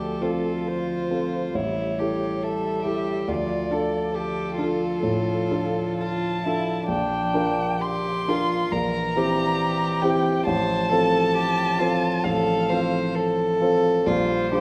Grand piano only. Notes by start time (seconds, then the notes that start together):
Already playing: D2
0.21 C4 F4 A4
1.10 C4 F4 A4
1.54 A1
2.00 E4 G4 A4
2.85 E4 G4 A4
3.28 D2
3.71 D4 F4 A4
4.58 D4 F4 A4
5.03 A2
5.51 D4 F4 A4
6.46 D4 F4 A4
6.88 A#1
7.34 D4 F4 A#4
8.28 D4 F4 A#4
8.72 A#1
9.16 C4 E4 G4
10.03 C4 E4 G4
10.47 A1
10.91 C4 F4 A4
11.80 C4 F4 A4
12.25 A1
12.70 C4 F4 A4
13.61 C4 F4 A4
14.06 A#1
14.52 D4 F4 G4